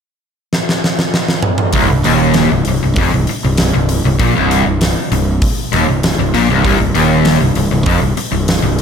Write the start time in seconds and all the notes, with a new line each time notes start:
0.53 snare
0.69 snare
0.84 snare
0.99 snare
1.14 snare
1.28 snare
1.43 mid tom
1.58 mid tom
1.73 C1 C2, kick, open hi-hat
1.90 C1 C2
2.04 D#1 D#2, open hi-hat
2.34 snare, open hi-hat
2.52 C1 C2
2.65 C1 C2, open hi-hat
2.83 C1 C2
2.96 F1 F2, kick, open hi-hat
3.14 C1 C2
3.27 muted distorted electric guitar stroke, muted fingered electric bass stroke, muted overdriven electric guitar stroke, open hi-hat
3.44 C1 C2
3.57 snare, open hi-hat
3.74 C1 C2
3.89 open hi-hat
4.05 C1 C2
4.19 A#1 A#2, kick, open hi-hat
4.35 C1 C2
4.51 open hi-hat
4.66 C1 C2
4.81 snare, open hi-hat
5.11 C1 C2, open hi-hat
5.42 kick, open hi-hat
5.73 D#1 D#2, snare, open hi-hat
5.89 C1 C2
6.03 snare, open hi-hat
6.18 C1 C2
6.34 A#1 A#2, open hi-hat
6.50 C1 C2
6.65 C1 C2, kick, open hi-hat
6.79 C1 C2
6.94 D#1 D#2, open hi-hat
7.25 snare, open hi-hat
7.41 C1 C2
7.55 C1 C2, open hi-hat
7.71 C1 C2
7.86 F1 F2, kick, open hi-hat
8.02 C1 C2
8.17 muted fingered electric bass stroke, muted distorted electric guitar stroke, muted overdriven electric guitar stroke, open hi-hat
8.32 C1 C2
8.48 snare, open hi-hat
8.62 C1 C2
8.79 open hi-hat